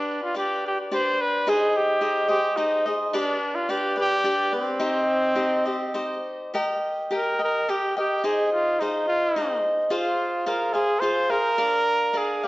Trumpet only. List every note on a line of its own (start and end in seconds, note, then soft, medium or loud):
0.00 0.18 D4 medium
0.23 0.35 F4 medium
0.38 0.63 G4 medium
0.67 0.79 G4 medium
0.94 1.22 C5 medium
1.21 1.50 B4 medium
1.49 1.78 G#4 medium
1.76 2.30 G4 medium
2.30 2.58 G4 medium
2.57 3.00 D#4 medium
3.13 3.57 D4 medium
3.55 3.71 F4 medium
3.70 3.98 G4 medium
3.99 4.51 G4 loud
4.55 6.22 C4 medium
7.15 7.40 A#4 medium
7.44 7.71 A#4 medium
7.70 7.97 G4 medium
7.98 8.27 G4 medium
8.25 8.52 G#4 medium
8.53 8.81 F4 medium
8.80 9.07 D#4 medium
9.08 9.60 F4 medium
9.92 10.43 F4 medium
10.47 10.75 A#4 medium
10.73 11.01 G#4 medium
11.00 11.32 C5 medium
11.30 12.19 A#4 medium
12.17 12.46 G#4 medium
12.45 12.48 G4 medium